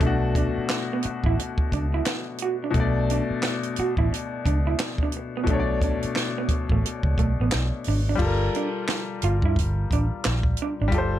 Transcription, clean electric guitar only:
0.03 D4
0.38 D4
0.93 B3
1.06 muted clean electric guitar stroke
1.26 E4
1.40 muted clean electric guitar stroke
1.74 D4
1.94 E4
2.08 muted clean electric guitar stroke
2.42 F#4
2.64 D4
3.11 D4
3.45 muted clean electric guitar stroke
3.80 F#4
3.99 E4
4.13 muted clean electric guitar stroke
4.46 D4
4.67 E4
5.03 D4
5.17 muted clean electric guitar stroke
5.37 B3
5.50 D4
5.84 D4
6.38 B3
6.51 muted clean electric guitar stroke
6.72 A3
6.85 muted clean electric guitar stroke
7.19 A3
7.41 B3
7.55 muted clean electric guitar stroke
7.88 D4
8.09 D4
8.56 D4
8.90 muted clean electric guitar stroke
9.24 F4
9.45 E4
9.93 D4
10.27 muted clean electric guitar stroke
10.62 D4
10.82 D4
10.94 G4

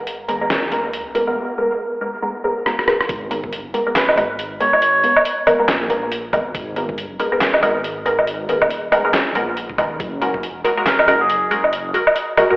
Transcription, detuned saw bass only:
Already playing: G#1
0.29 D#2
3.09 G#1
3.54 G1
4.17 G#1
5.68 A#1
6.33 G#1
6.55 G#1
7.00 G1
7.63 G#1
8.49 D#1
9.35 A#1
9.78 D#1
10.00 F#1
10.45 F1
11.08 F#1

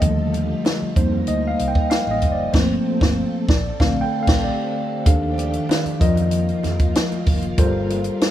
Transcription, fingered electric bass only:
0.02 D#2
0.82 muted fingered electric bass stroke
0.96 F2
1.28 D2
1.60 C2
2.07 A1
2.22 F#1
2.54 G1
3.01 G1
3.49 A#1
3.80 A#1
4.27 A#1
5.07 D#2
5.86 muted fingered electric bass stroke
6.01 F2
6.65 F2
7.27 F#1
7.58 G1

